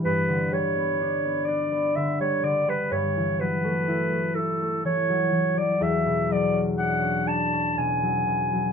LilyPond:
<<
  \new Staff \with { instrumentName = "Clarinet" } { \time 3/4 \key e \dorian \tempo 4 = 62 b'8 cis''4 d''8 e''16 cis''16 d''16 b'16 | cis''8 b'4 a'8 cis''8. d''16 | e''8 d''16 r16 fis''8 a''8 gis''4 | }
  \new Staff \with { instrumentName = "Harp" } { \clef bass \time 3/4 \key e \dorian <g, g b d'>16 d16 g16 b16 d'16 b16 d'16 b16 d16 g16 d16 g16 | g,16 e16 fis16 a16 e'16 a16 e'16 a16 e16 fis16 e16 fis16 | e,16 b,16 fis16 cis'16 d'16 cis'16 d'16 cis'16 b,16 fis16 b,16 fis16 | }
>>